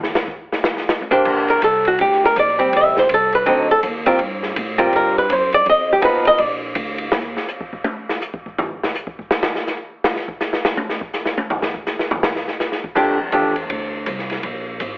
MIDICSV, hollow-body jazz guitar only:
0, 0, Header, 1, 2, 480
1, 0, Start_track
1, 0, Key_signature, -2, "major"
1, 0, Tempo, 365854
1, 1652, Time_signature, 4, 2, 24, 8
1, 19650, End_track
2, 0, Start_track
2, 0, Title_t, "Hollow-body jazz guitar"
2, 0, Program_c, 0, 26
2, 1456, Note_on_c, 0, 58, 62
2, 1464, Note_on_c, 0, 62, 62
2, 1469, Note_on_c, 0, 67, 59
2, 1473, Note_on_c, 0, 72, 61
2, 1962, Note_off_c, 0, 72, 0
2, 1968, Note_on_c, 0, 70, 76
2, 2088, Note_off_c, 0, 58, 0
2, 2092, Note_off_c, 0, 62, 0
2, 2094, Note_off_c, 0, 67, 0
2, 2134, Note_off_c, 0, 70, 0
2, 2152, Note_on_c, 0, 69, 78
2, 2437, Note_off_c, 0, 69, 0
2, 2461, Note_on_c, 0, 66, 83
2, 2621, Note_off_c, 0, 66, 0
2, 2636, Note_on_c, 0, 67, 83
2, 2920, Note_off_c, 0, 67, 0
2, 2958, Note_on_c, 0, 70, 82
2, 3110, Note_off_c, 0, 70, 0
2, 3139, Note_on_c, 0, 74, 77
2, 3395, Note_on_c, 0, 55, 61
2, 3403, Note_on_c, 0, 60, 60
2, 3412, Note_off_c, 0, 74, 0
2, 3628, Note_on_c, 0, 76, 69
2, 3897, Note_off_c, 0, 76, 0
2, 3921, Note_on_c, 0, 72, 75
2, 4019, Note_off_c, 0, 55, 0
2, 4023, Note_off_c, 0, 60, 0
2, 4072, Note_off_c, 0, 72, 0
2, 4118, Note_on_c, 0, 69, 85
2, 4382, Note_off_c, 0, 69, 0
2, 4394, Note_on_c, 0, 71, 89
2, 4537, Note_on_c, 0, 50, 67
2, 4544, Note_on_c, 0, 54, 64
2, 4549, Note_on_c, 0, 63, 85
2, 4550, Note_on_c, 0, 60, 73
2, 4575, Note_off_c, 0, 71, 0
2, 4575, Note_on_c, 0, 72, 83
2, 4810, Note_off_c, 0, 50, 0
2, 4813, Note_off_c, 0, 54, 0
2, 4816, Note_off_c, 0, 60, 0
2, 4816, Note_off_c, 0, 63, 0
2, 4850, Note_off_c, 0, 72, 0
2, 4870, Note_on_c, 0, 69, 94
2, 4967, Note_off_c, 0, 69, 0
2, 5332, Note_on_c, 0, 55, 58
2, 5333, Note_on_c, 0, 60, 70
2, 5343, Note_on_c, 0, 70, 68
2, 5344, Note_on_c, 0, 65, 74
2, 5486, Note_off_c, 0, 55, 0
2, 5486, Note_off_c, 0, 60, 0
2, 5491, Note_off_c, 0, 70, 0
2, 5492, Note_off_c, 0, 65, 0
2, 6274, Note_on_c, 0, 55, 71
2, 6276, Note_on_c, 0, 60, 74
2, 6282, Note_on_c, 0, 65, 71
2, 6284, Note_on_c, 0, 70, 67
2, 6490, Note_off_c, 0, 70, 0
2, 6506, Note_on_c, 0, 70, 85
2, 6777, Note_off_c, 0, 70, 0
2, 6800, Note_on_c, 0, 71, 80
2, 6899, Note_off_c, 0, 55, 0
2, 6900, Note_off_c, 0, 60, 0
2, 6903, Note_off_c, 0, 65, 0
2, 6986, Note_off_c, 0, 71, 0
2, 6986, Note_on_c, 0, 72, 79
2, 7257, Note_off_c, 0, 72, 0
2, 7274, Note_on_c, 0, 74, 91
2, 7429, Note_off_c, 0, 74, 0
2, 7471, Note_on_c, 0, 75, 97
2, 7739, Note_off_c, 0, 75, 0
2, 7775, Note_on_c, 0, 67, 63
2, 7892, Note_on_c, 0, 53, 57
2, 7898, Note_on_c, 0, 59, 63
2, 7899, Note_off_c, 0, 67, 0
2, 7904, Note_on_c, 0, 63, 62
2, 7905, Note_on_c, 0, 68, 69
2, 7929, Note_off_c, 0, 68, 0
2, 7934, Note_on_c, 0, 71, 75
2, 8210, Note_off_c, 0, 71, 0
2, 8230, Note_on_c, 0, 75, 104
2, 8374, Note_off_c, 0, 53, 0
2, 8377, Note_off_c, 0, 59, 0
2, 8380, Note_off_c, 0, 63, 0
2, 8400, Note_off_c, 0, 75, 0
2, 8400, Note_on_c, 0, 74, 82
2, 8575, Note_off_c, 0, 74, 0
2, 16996, Note_on_c, 0, 53, 50
2, 17006, Note_on_c, 0, 57, 47
2, 17010, Note_on_c, 0, 62, 58
2, 17017, Note_on_c, 0, 67, 64
2, 17274, Note_off_c, 0, 53, 0
2, 17279, Note_off_c, 0, 57, 0
2, 17281, Note_off_c, 0, 62, 0
2, 17284, Note_off_c, 0, 67, 0
2, 17480, Note_on_c, 0, 53, 45
2, 17489, Note_on_c, 0, 57, 40
2, 17491, Note_on_c, 0, 62, 44
2, 17500, Note_on_c, 0, 67, 44
2, 17756, Note_off_c, 0, 53, 0
2, 17761, Note_off_c, 0, 57, 0
2, 17762, Note_off_c, 0, 62, 0
2, 17766, Note_off_c, 0, 67, 0
2, 19650, End_track
0, 0, End_of_file